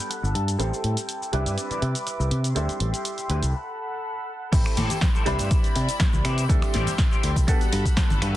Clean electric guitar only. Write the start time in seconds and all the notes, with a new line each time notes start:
0.09 F#5, muted clean electric guitar stroke
0.22 muted clean electric guitar stroke
0.34 A5, muted clean electric guitar stroke
0.58 G4 A4 C5
0.83 muted clean electric guitar stroke
1.21 muted clean electric guitar stroke
1.33 E4 B4 D5
1.70 E4 B4 D5
1.95 muted clean electric guitar stroke
2.06 muted clean electric guitar stroke
2.19 muted clean electric guitar stroke
2.31 muted clean electric guitar stroke
2.56 E4 G4 C5
3.18 muted clean electric guitar stroke
3.30 E4 G4 B4
4.66 muted clean electric guitar stroke
4.77 E4 G4 A4 C5
5.15 E4 G4 A4 C5
5.26 E4 B4 C5 D5
5.75 muted clean electric guitar stroke
5.88 muted clean electric guitar stroke
6.25 E4 B4 C5 D5
6.62 muted clean electric guitar stroke
6.74 E4 G4 C5 D5
7.12 E4 G4 C5 D5
7.47 muted clean electric guitar stroke
7.72 muted clean electric guitar stroke
7.85 muted clean electric guitar stroke
8.21 F#4 G4 A4 B4